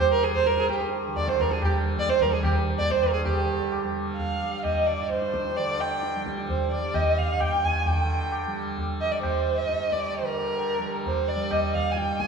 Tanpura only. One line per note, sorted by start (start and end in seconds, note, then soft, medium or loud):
0.00 0.48 G2 medium
0.00 1.07 D3 medium
0.00 1.65 G3 medium
0.48 2.82 G2 medium
1.07 3.24 D3 medium
1.65 2.25 G3 medium
2.25 3.84 G3 medium
2.82 5.00 G2 medium
3.25 5.58 D3 medium
3.84 4.42 G3 medium
4.42 6.16 G3 medium
5.00 7.31 G2 medium
5.58 7.89 D3 medium
6.16 6.75 G3 medium
6.75 8.47 G3 medium
7.32 9.61 G2 medium
7.90 10.21 D3 medium
8.47 9.05 G3 medium
9.05 10.78 G3 medium
9.62 11.94 G2 medium
10.21 12.27 D3 medium
10.78 11.36 G3 medium
11.36 12.27 G3 medium
11.94 12.27 G2 medium